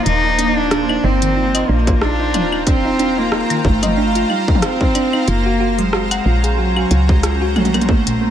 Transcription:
0.00 1.42 F3 medium
0.00 1.67 A#3 medium
0.00 2.16 C5 medium
0.00 1.65 D5 medium
0.06 0.98 D#1 loud
0.06 0.16 D#4 medium
0.06 0.59 D#4 loud
0.06 6.20 F4 medium
0.06 8.30 C5 medium
0.06 closed hi-hat medium
0.24 0.29 D#4 medium
0.24 6.20 A#5 medium
0.39 0.53 D4 loud
0.39 closed hi-hat medium
0.52 6.20 F5 medium
0.57 1.06 D4 loud
0.57 0.68 D#4 loud
0.71 0.81 D4 loud
0.71 cross-stick loud
0.71 closed hi-hat soft
0.89 0.94 D#4 loud
0.89 claves medium
1.04 1.63 G1 medium
1.04 1.71 C4 loud
1.04 1.10 D#4 loud
1.21 1.30 D#3 loud
1.21 5.28 G5 medium
1.21 closed hi-hat medium
1.36 1.46 D#4 medium
1.55 1.66 D#5 loud
1.55 closed hi-hat medium
1.55 claves medium
1.69 2.36 A#1 loud
1.69 2.03 A#3 loud
1.69 1.75 D4 loud
1.87 1.99 F4 medium
1.87 kick medium
1.87 closed hi-hat soft
2.02 2.66 D4 loud
2.02 2.11 D#4 medium
2.02 cross-stick loud
2.20 2.28 D#4 medium
2.34 3.43 D#1 loud
2.34 2.44 D#4 medium
2.34 closed hi-hat medium
2.34 high tom medium
2.34 claves soft
2.52 2.57 D#4 medium
2.52 claves medium
2.67 3.19 C4 loud
2.67 2.81 D4 loud
2.67 kick medium
2.67 closed hi-hat medium
2.85 2.97 D#4 loud
2.99 3.09 D4 loud
2.99 closed hi-hat medium
3.18 3.66 A#3 loud
3.18 3.22 D#4 loud
3.32 3.38 D#4 loud
3.32 cross-stick loud
3.50 3.58 D#3 loud
3.50 closed hi-hat medium
3.50 claves medium
3.65 4.24 G1 medium
3.65 4.31 A3 loud
3.65 3.74 D#4 medium
3.65 kick medium
3.83 3.94 D#5 loud
3.83 closed hi-hat medium
3.83 high tom medium
3.83 claves soft
3.97 4.03 D4 loud
4.15 4.27 F4 medium
4.15 closed hi-hat soft
4.30 4.62 G3 medium
4.30 4.40 D#4 medium
4.30 claves soft
4.48 4.56 D#4 medium
4.48 kick medium
4.55 high tom loud
4.62 5.29 C4 loud
4.62 4.72 D#4 medium
4.62 cross-stick loud
4.62 closed hi-hat medium
4.81 4.85 D#4 medium
4.81 kick medium
4.95 5.10 D4 loud
4.95 closed hi-hat medium
4.95 claves soft
5.13 5.25 D#4 loud
5.13 claves medium
5.28 6.20 F#1 loud
5.28 5.80 A#3 loud
5.28 5.37 F4 loud
5.28 7.56 F#4 medium
5.28 closed hi-hat medium
5.46 5.51 F#4 loud
5.54 7.56 C#4 medium
5.60 5.66 F#4 loud
5.79 5.86 F#3 loud
5.79 6.58 G#3 loud
5.79 7.56 G#5 medium
5.79 closed hi-hat medium
5.93 6.03 F#4 medium
5.93 cross-stick loud
6.11 6.23 F#5 loud
6.11 closed hi-hat medium
6.11 claves medium
6.26 6.85 A#1 medium
6.26 6.31 F4 loud
6.31 8.30 A#5 medium
6.44 6.55 G#4 medium
6.44 closed hi-hat medium
6.58 7.11 F#3 loud
6.58 6.68 F#4 medium
6.76 6.84 F#4 medium
6.76 claves medium
6.91 7.58 C#2 loud
6.91 7.00 F#4 medium
6.91 closed hi-hat medium
7.09 7.58 G#3 medium
7.09 7.14 F#4 medium
7.09 kick medium
7.23 7.38 F4 loud
7.23 cross-stick loud
7.23 closed hi-hat medium
7.42 7.53 F#4 loud
7.56 8.30 A#1 loud
7.56 7.90 G3 medium
7.56 7.66 A3 loud
7.56 8.30 C4 medium
7.56 closed hi-hat soft
7.56 high tom medium
7.56 claves soft
7.65 closed hi-hat soft
7.65 high tom medium
7.74 7.79 A#3 loud
7.74 closed hi-hat soft
7.74 high tom medium
7.74 claves medium
7.81 closed hi-hat soft
7.81 high tom medium
7.88 8.30 A3 loud
7.88 7.94 A#3 loud
7.88 kick medium
8.07 8.14 A#2 loud
8.07 closed hi-hat medium
8.21 8.30 A#3 medium

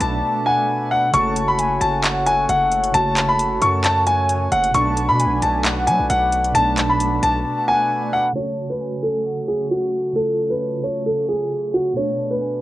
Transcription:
0.00 0.22 B1 loud
0.00 1.08 B2 medium
0.00 1.10 A3 medium
0.00 4.70 A3 medium
0.00 1.10 D4 medium
0.00 1.11 D4 medium
0.00 4.70 F#4 medium
0.00 1.10 B4 medium
0.00 0.43 A5 medium
0.00 closed hi-hat medium
0.46 0.67 F#5 loud
0.46 0.88 G#5 medium
0.91 1.08 F#5 medium
1.12 1.79 F#1 loud
1.12 2.90 C#3 medium
1.12 2.91 A3 medium
1.12 4.71 C#4 medium
1.12 4.71 C#5 medium
1.12 1.56 A5 loud
1.12 1.46 C#6 loud
1.12 closed hi-hat medium
1.17 2.92 F#4 medium
1.36 closed hi-hat medium
1.48 1.79 B5 medium
1.59 2.01 G#5 loud
1.59 closed hi-hat medium
1.81 2.46 F#1 loud
1.81 2.23 A5 medium
1.81 closed hi-hat medium
2.04 2.46 F#5 medium
2.04 clap loud
2.04 closed hi-hat medium
2.26 2.44 G#5 medium
2.26 closed hi-hat medium
2.49 2.92 F#1 loud
2.49 2.91 F#5 medium
2.49 closed hi-hat medium
2.71 closed hi-hat medium
2.83 closed hi-hat medium
2.92 3.59 F#1 loud
2.92 4.70 C#3 medium
2.92 4.71 A3 medium
2.92 3.26 A5 loud
2.92 3.58 A5 loud
2.92 closed hi-hat medium
2.96 4.72 F#4 medium
3.17 clap loud
3.17 closed hi-hat medium
3.29 3.60 B5 medium
3.39 closed hi-hat medium
3.62 4.48 F#2 loud
3.62 4.04 A5 medium
3.62 3.79 C#6 loud
3.62 closed hi-hat medium
3.84 4.02 A5 medium
3.84 clap loud
3.84 closed hi-hat medium
4.07 4.49 G#5 medium
4.07 4.49 G#5 loud
4.07 closed hi-hat medium
4.29 closed hi-hat medium
4.52 4.74 F#1 loud
4.52 4.69 F#5 medium
4.52 4.73 F#5 medium
4.52 closed hi-hat medium
4.64 closed hi-hat medium
4.71 5.10 B1 loud
4.71 6.50 B2 medium
4.71 6.51 A3 medium
4.71 8.32 A3 medium
4.71 8.32 D4 medium
4.71 8.32 F#4 medium
4.71 8.32 B4 medium
4.71 5.17 A5 loud
4.71 5.07 C#6 loud
4.71 closed hi-hat medium
4.76 6.52 D4 medium
4.97 closed hi-hat medium
5.09 5.27 B2 loud
5.09 5.40 B5 medium
5.20 5.62 G#5 medium
5.20 closed hi-hat medium
5.26 5.41 B1 loud
5.42 5.89 B1 loud
5.42 5.85 A5 medium
5.42 closed hi-hat medium
5.64 6.07 F#5 loud
5.64 clap loud
5.64 closed hi-hat medium
5.87 6.01 F#3 loud
5.87 6.04 G#5 medium
5.87 closed hi-hat medium
5.99 6.09 B1 loud
6.10 6.53 B1 loud
6.10 6.52 F#5 medium
6.10 closed hi-hat medium
6.32 closed hi-hat medium
6.44 closed hi-hat medium
6.52 7.20 B1 loud
6.52 8.30 B2 medium
6.52 8.32 A3 medium
6.52 6.87 A5 loud
6.52 7.19 A5 loud
6.52 closed hi-hat medium
6.57 8.33 D4 medium
6.77 clap loud
6.77 closed hi-hat medium
6.89 7.21 B5 medium
7.00 closed hi-hat medium
7.23 7.44 B1 loud
7.23 7.65 A5 medium
7.23 closed hi-hat medium
7.68 7.89 F#5 loud
7.68 8.10 G#5 medium
8.13 8.30 F#5 medium
8.33 10.11 C#3 medium
8.33 11.93 F#3 medium
8.33 10.12 A3 medium
8.33 12.61 A3 medium
8.33 11.93 C#4 medium
8.33 8.68 C#5 loud
8.33 11.93 C#5 medium
8.33 8.78 A5 loud
8.37 10.13 F#4 medium
8.70 9.01 B4 medium
8.81 9.23 G#5 medium
9.03 9.45 A4 medium
9.26 9.68 F#5 medium
9.48 9.65 G#4 medium
9.71 10.13 F#4 medium
10.13 11.91 C#3 medium
10.13 11.92 A3 medium
10.13 10.48 A4 medium
10.13 10.80 A5 loud
10.18 11.94 F4 medium
10.50 10.81 B4 medium
10.83 11.01 C#5 medium
10.83 11.26 A5 medium
11.06 11.23 A4 medium
11.29 11.71 G#4 medium
11.29 11.71 G#5 loud
11.74 11.91 F#4 medium
11.74 11.95 F#5 medium
11.93 12.61 B2 medium
11.93 12.61 A3 medium
11.93 12.61 D4 medium
11.93 12.61 F#4 medium
11.93 12.61 B4 medium
11.93 12.29 C#5 loud
11.93 12.39 A5 loud
11.98 12.61 D4 medium
12.31 12.61 B4 medium
12.41 12.61 G#5 medium

